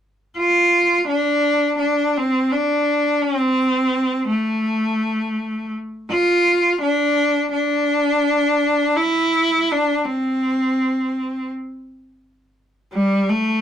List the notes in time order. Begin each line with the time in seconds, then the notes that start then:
0.39 F4
1.08 D4
1.79 D4
2.17 C4
2.51 D4
3.22 C4
4.30 A3
6.11 F4
6.82 D4
7.53 D4
8.96 E4
9.72 D4
10.05 C4
12.94 G3
13.30 A3